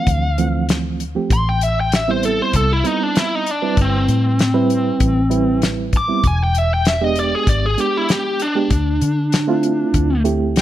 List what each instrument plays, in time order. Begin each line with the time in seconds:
Already playing: reed electric piano E3 F3 A3 C4, lead electric guitar F5
0.07 fingered electric bass D2, kick, closed hi-hat
0.38 reed electric piano E3 F3 A3 C4, closed hi-hat
0.69 snare, closed hi-hat
1.00 closed hi-hat
1.15 reed electric piano F3 A3 C4 G4
1.30 fingered electric bass A1, lead electric guitar C6, kick, closed hi-hat
1.49 lead electric guitar G5
1.61 lead electric guitar E5, closed hi-hat
1.80 lead electric guitar G5
1.92 lead electric guitar E5, snare, closed hi-hat
2.08 reed electric piano G3 B3 C4 E4, lead electric guitar C5
2.23 lead electric guitar A4, closed hi-hat
2.42 lead electric guitar C5
2.53 fingered electric bass C2, lead electric guitar A4, kick, closed hi-hat
2.73 lead electric guitar E4
2.84 reed electric piano G3 B3 C4 E4, lead electric guitar D#4, closed hi-hat
3.03 lead electric guitar D4
3.15 lead electric guitar E4, snare, closed hi-hat
3.35 lead electric guitar D#4
3.46 closed hi-hat
3.51 lead electric guitar D4
3.62 reed electric piano G3 C4 E4 B4
3.77 fingered electric bass G1, kick, closed hi-hat
3.82 lead electric guitar C4
4.08 fingered electric bass A2, closed hi-hat
4.39 snare, closed hi-hat
4.54 reed electric piano G3 C4 E4 B4
4.70 closed hi-hat
5.00 fingered electric bass A1, kick, closed hi-hat
5.30 reed electric piano G3 C4 E4 B4, closed hi-hat
5.62 snare, closed hi-hat
5.93 kick, closed hi-hat
5.97 lead electric guitar D6
6.08 reed electric piano G3 B3 C4 E4
6.24 fingered electric bass E1, lead electric guitar G#5, kick, closed hi-hat
6.43 lead electric guitar G5
6.55 lead electric guitar E5, closed hi-hat
6.74 lead electric guitar G5
6.85 lead electric guitar E5, snare, closed hi-hat
7.01 reed electric piano G#3 B3 D4 G4, lead electric guitar D#5
7.16 lead electric guitar D5, closed hi-hat
7.35 lead electric guitar G#4
7.47 fingered electric bass G#1, lead electric guitar D5, kick, closed hi-hat
7.66 lead electric guitar G#4
7.77 reed electric piano G#3 B3 D4 G4, lead electric guitar G4, closed hi-hat
7.97 lead electric guitar E4
8.09 lead electric guitar G4, snare, closed hi-hat
8.40 lead electric guitar D4, closed hi-hat
8.55 reed electric piano G#3 B3 D4 G4
8.70 fingered electric bass D2, kick, closed hi-hat
9.01 fingered electric bass D3, closed hi-hat
9.32 snare, closed hi-hat
9.47 reed electric piano A3 C4 E4 F4
9.63 closed hi-hat
9.94 fingered electric bass D2, kick, closed hi-hat
10.24 reed electric piano A3 C4 E4 G4, closed hi-hat
10.56 snare, closed hi-hat